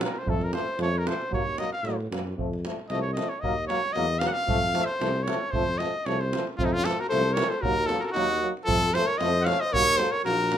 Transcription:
0.00 euphonium F#3, trombone A#3, davul high
0.04 trumpet A#4
0.16 trumpet C5, davul high
0.25 tuba F2, euphonium F3, trombone A3, davul low
0.29 trumpet A4
0.41 trumpet A#4, davul high
0.52 euphonium F3, trombone A3, trumpet C5, davul high
0.68 davul high
0.78 tuba F2, euphonium F3, trombone A3, davul high
0.82 trumpet C#5
0.95 trumpet A#4, davul high
1.05 euphonium F3, trombone A3, trumpet C5, davul high
1.22 davul high
1.30 tuba D#2, euphonium F#3, trombone A#3, davul low
1.34 trumpet C#5
1.47 davul high
1.58 euphonium F#3, trombone A#3, trumpet D#5, davul high
1.72 trumpet F5, davul high
1.83 tuba A2, euphonium F#3, trombone A#3, davul high
2.00 davul high
2.10 tuba F#2, euphonium F#3, trombone A#3, davul high
2.27 davul high
2.36 tuba F2, euphonium F3, trombone A3, davul low
2.53 davul high
2.65 euphonium F3, trombone A3, davul high
2.79 davul high
2.89 tuba C2, euphonium F3, trombone A3, trumpet D#5, davul high
3.01 trumpet C#5
3.13 euphonium F3, trombone A3, trumpet D#5, davul high
3.29 trumpet C#5, davul high
3.41 tuba D#2, euphonium F#3, trombone A#3, trumpet D#5, davul low
3.59 davul high
3.67 euphonium F#3, trombone A#3, trumpet C#5, davul high
3.85 davul high
3.93 tuba E2, euphonium F#3, trombone A#3, trumpet D#5, davul high
4.10 davul high
4.19 euphonium F#3, trombone A#3, trumpet F5, davul high
4.27 trumpet F#5
4.33 trumpet F5
4.37 davul high
4.46 tuba F2, euphonium F3, trombone A3, davul low
4.63 davul high
4.73 euphonium F3, trombone A3, davul high
4.85 trumpet C5
4.90 davul high
5.00 tuba C2, euphonium F3, trombone A3, davul high
5.16 davul high
5.23 trombone A3, trumpet C#5
5.28 euphonium F3, davul high
5.43 davul high
5.51 tuba F2, euphonium F3, trombone A3, trumpet C5, davul low
5.69 davul high
5.78 euphonium F3, trombone A3, trumpet D#5, davul high
6.06 tuba C2, euphonium F3, trombone A3, trumpet C#5, davul high
6.20 trumpet C5, davul high
6.33 euphonium F3, trombone A3, davul high
6.47 davul high
6.57 tuba F2, euphonium F3, trombone A3, alto saxophone C4, trumpet F4, davul low
6.65 alto saxophone C4, trumpet D#4
6.73 alto saxophone C#4, trumpet F4, davul high
6.84 euphonium F3, trombone A3, alto saxophone F4, trumpet A4, davul high
7.00 alto saxophone F#4, trumpet A#4, davul high
7.09 tuba C2, euphonium F3, trombone A3, alto saxophone A4, trumpet C5, davul high
7.32 alto saxophone A#4, trumpet C#5
7.36 euphonium F3, trombone A3, davul high
7.49 alto saxophone A4, trumpet C5, davul high
7.60 euphonium F#3, trombone A#3, alto saxophone F#4, trumpet A#4, davul low
7.64 tuba D#2
7.86 euphonium F#3, trombone A#3, alto saxophone F4, trumpet A4, davul high
8.00 alto saxophone F#4, trumpet A4 A#4
8.04 alto saxophone F4, trumpet A#4, davul high
8.09 alto saxophone D#4 F#4, trumpet F#4
8.15 tuba D#2, euphonium F#3, trombone A#3, davul high
8.41 euphonium F#3, trombone A#3
8.57 davul high
8.65 tuba F2, euphonium F3, trombone A3, alto saxophone F4, trumpet A4, davul low
8.84 davul high
8.91 euphonium F3, trombone A3, alto saxophone A4, trumpet C5
8.95 davul high
9.06 alto saxophone A#4, trumpet C#5, davul high
9.18 tuba F2, euphonium F3, trombone A3, alto saxophone C5, trumpet D#5, davul high
9.42 euphonium F3, alto saxophone D#5, trumpet F5 F#5
9.46 trombone A3, alto saxophone C#5, davul high
9.60 alto saxophone C5, trumpet D#5, davul high
9.72 tuba D#2, euphonium F#3, trombone A#3, alto saxophone A#4, trumpet C#5, davul low
9.87 davul high
9.96 euphonium F#3, trombone A#3, alto saxophone A4, trumpet C5, davul high
10.11 alto saxophone A#4, trumpet C#5, davul high
10.24 tuba A#1, euphonium F#3, trombone A#3, alto saxophone F#4, trumpet A#4, davul high
10.41 davul high
10.50 euphonium F#3, trombone A#3, davul high

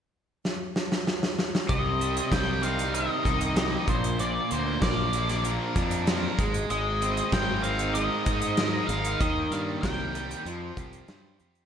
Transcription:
0.45 snare
0.76 snare
0.92 snare
1.07 snare
1.23 snare
1.39 snare
1.55 snare
1.69 fingered electric bass C2, overdriven electric guitar C3, lead electric guitar D#5, kick, closed hi-hat
1.99 overdriven electric guitar G3, closed hi-hat
2.17 closed hi-hat
2.31 fingered electric bass C2, overdriven electric guitar G3 G4, lead electric guitar G5, kick, snare, closed hi-hat
2.62 overdriven electric guitar C4 D#4, lead electric guitar F5, closed hi-hat
2.79 closed hi-hat
2.93 overdriven electric guitar D#3 G4, lead electric guitar D#5, closed hi-hat
3.25 fingered electric bass C2, overdriven electric guitar D#4, kick, closed hi-hat
3.41 closed hi-hat
3.56 overdriven electric guitar G3 G4, snare, closed hi-hat
3.87 fingered electric bass A#1, overdriven electric guitar A#2, lead electric guitar C5, kick, closed hi-hat
4.04 closed hi-hat
4.19 overdriven electric guitar A#2, lead electric guitar D5, closed hi-hat
4.50 fingered electric bass D2, overdriven electric guitar D3 A#3, lead electric guitar C5, closed hi-hat
4.81 fingered electric bass A#1, overdriven electric guitar F3 A#4, lead electric guitar D5, kick, snare, closed hi-hat
5.13 overdriven electric guitar A#3 D4, closed hi-hat
5.29 snare, closed hi-hat
5.44 overdriven electric guitar F3 A#4, closed hi-hat
5.76 fingered electric bass F2, overdriven electric guitar D4, kick, closed hi-hat
5.91 closed hi-hat
6.07 overdriven electric guitar F3 A#4, snare, closed hi-hat
6.38 fingered electric bass G#1, overdriven electric guitar G#3, kick, closed hi-hat
6.54 closed hi-hat
6.70 fingered electric bass G#1, overdriven electric guitar G#3, lead electric guitar D#5, closed hi-hat
7.02 overdriven electric guitar C4, closed hi-hat
7.17 closed hi-hat
7.32 fingered electric bass G#1, overdriven electric guitar G#3 A#4, lead electric guitar G5, kick, snare, closed hi-hat
7.63 overdriven electric guitar C4 D#4, lead electric guitar F5, closed hi-hat
7.79 closed hi-hat
7.94 overdriven electric guitar G#3 A#4, lead electric guitar D#5, closed hi-hat
8.26 fingered electric bass G#2, overdriven electric guitar D#4, kick, closed hi-hat
8.42 closed hi-hat
8.57 overdriven electric guitar G#3 A#4, snare, closed hi-hat
8.87 fingered electric bass G#1, overdriven electric guitar D#4, lead electric guitar F5, closed hi-hat
9.05 closed hi-hat
9.20 fingered electric bass D#2, overdriven electric guitar D#3, lead electric guitar D#5, kick, closed hi-hat
9.51 fingered electric bass G2, overdriven electric guitar G3 A#3, lead electric guitar F5, closed hi-hat
9.82 fingered electric bass C2, overdriven electric guitar A#3 A#4, lead electric guitar G5, kick, snare, closed hi-hat
10.14 overdriven electric guitar G3 G4, closed hi-hat
10.31 closed hi-hat
10.45 fingered electric bass F2, overdriven electric guitar F3, closed hi-hat
10.77 fingered electric bass C2, overdriven electric guitar F4 G4, kick, closed hi-hat
10.93 closed hi-hat
11.08 fingered electric bass G2, overdriven electric guitar G3 C5, snare, closed hi-hat
11.39 fingered electric bass F2, overdriven electric guitar F4 G4, closed hi-hat
11.55 closed hi-hat

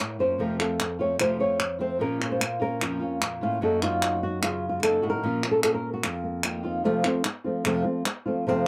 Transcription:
Already playing: nylon-string guitar A#4 C#5
0.00 nylon-string guitar A2, muted nylon-string guitar stroke
0.19 nylon-string guitar F#2 A#3 C#4 F4 C5
0.38 nylon-string guitar F2 C3 F3 A3 C4 F4 A#4
0.59 nylon-string guitar F3 A3 C4 F4 A4, clap
0.80 muted nylon-string guitar stroke, clap
0.99 nylon-string guitar F3 A3 C4 F4 C#5
1.19 nylon-string guitar F2 C3 F3 A3 C4 F4 C5, clap
1.39 nylon-string guitar F3 A3 C4 F4 C#5
1.59 muted nylon-string guitar stroke, clap
1.79 nylon-string guitar F3 A3 C4 F4 C5
1.99 nylon-string guitar A#2 F3 A#3 C#4 F4 A#4
2.20 nylon-string guitar A#3 C#4 F4, clap
2.32 nylon-string guitar C5
2.40 nylon-string guitar F4, muted nylon-string guitar stroke, clap
2.59 nylon-string guitar A#3 C#4 F4 A#4
2.80 nylon-string guitar F2 A#2 F3 A#3 C#4 F4, clap
2.99 nylon-string guitar A#3 C#4 F4
3.21 nylon-string guitar A#2, muted nylon-string guitar stroke, clap
3.41 nylon-string guitar A2 A#3 C#4 F4
3.61 nylon-string guitar F#2 F#3 A#3 D#4 F#4 A4
3.82 nylon-string guitar A#3 D#4 F4 F#4, clap
4.01 nylon-string guitar A#3 D#4 F#4, clap
4.23 nylon-string guitar F#4
4.42 nylon-string guitar C#3 F4, muted nylon-string guitar stroke, clap
4.69 nylon-string guitar F4
4.82 nylon-string guitar F#2 F#3 A#3 D#4 F#4 A4, clap
5.02 nylon-string guitar A2 A#3 D#4 F#4
5.10 nylon-string guitar A#4
5.23 nylon-string guitar A#2 F3 A#3 C#4 F4
5.42 nylon-string guitar A#3 C#4 F4, clap
5.51 nylon-string guitar A4
5.63 nylon-string guitar A#3 C#4 F4 A4, clap
5.74 nylon-string guitar A#4
5.93 nylon-string guitar F#4
6.03 nylon-string guitar F2 F4, muted nylon-string guitar stroke, clap
6.24 nylon-string guitar A#3
6.43 nylon-string guitar D#3 A#3 C4 F4, clap
6.63 nylon-string guitar D#3 A#3 C4 F4
6.84 nylon-string guitar F2 C3 F3 A3 C4 F4
7.04 nylon-string guitar F3 A3 C4 F4, clap
7.24 muted nylon-string guitar stroke, clap
7.44 nylon-string guitar F3 A3 C4 F4
7.64 nylon-string guitar F2 C3 F3 A3 C4 F4, clap
7.84 nylon-string guitar F3 A3 C4 F4
8.05 muted nylon-string guitar stroke, clap
8.26 nylon-string guitar F3 A3 C4 F4
8.47 nylon-string guitar F2 C3 F3 A3 C4 F4

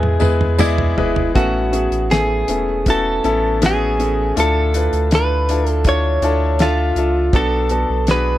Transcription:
Already playing: sub bass E2, grand piano B2 G#3 B3 E4 G#4 B4, clean electric guitar G#4
0.03 mid tom
0.19 sub bass E2, grand piano G#3 B3 E4 G#4 B4, mid tom, tambourine
0.41 mid tom
0.58 grand piano G#3 B3 E4 G#4 D5, clean electric guitar E4, mid tom, tambourine
0.78 floor tom
0.97 sub bass E1, grand piano G#3 B3 E4 G#4 B4, floor tom
1.16 floor tom
1.34 sub bass A1, grand piano A2 E3 B3 C#4 E4 A4, clean electric guitar F#4, kick, closed hi-hat
1.72 grand piano B3 C#4 E4 G#4, closed hi-hat
1.91 sub bass A1, closed hi-hat
2.11 grand piano A3 B3 C#4 E4, clean electric guitar G#4, snare, closed hi-hat
2.48 sub bass E1, grand piano A3 B3 C#4 E4, closed hi-hat
2.86 grand piano B3 C#4 E4 F#4, kick, closed hi-hat
2.90 clean electric guitar A4
3.24 sub bass A1, grand piano B3 C#4 E4 A4, closed hi-hat
3.62 grand piano B3 C#4 E4 F#4, snare, closed hi-hat
3.66 clean electric guitar G#4
3.99 grand piano A3 B3 C#4 E4, closed hi-hat
4.36 sub bass D2, grand piano A2 D4 E4 F4 A4, clean electric guitar A4, closed hi-hat
4.74 grand piano D4 E4 F4 B4, closed hi-hat
4.93 sub bass D2, closed hi-hat
5.11 grand piano D4 E4 F4 A4, clean electric guitar B4, snare, closed hi-hat
5.49 grand piano D4 E4 F4 A4, closed hi-hat
5.66 clean electric guitar A4, closed hi-hat
5.84 grand piano D4 E4 F4 A4, kick, closed hi-hat
5.89 clean electric guitar C#5
6.22 sub bass D2, grand piano D4 E4 F4 A4, closed hi-hat
6.59 grand piano D4 F4 A4 E5, clean electric guitar F4, snare, closed hi-hat
6.96 sub bass C#2, grand piano D4 F4 A4 E5, closed hi-hat
7.33 sub bass B1, grand piano B3 D4 F#4 A4, clean electric guitar A4, kick, closed hi-hat
7.69 grand piano B3 D4 F#4 A4, closed hi-hat
7.90 sub bass B1
8.07 grand piano B3 D4 F#4 G#4, snare, closed hi-hat
8.11 clean electric guitar B4

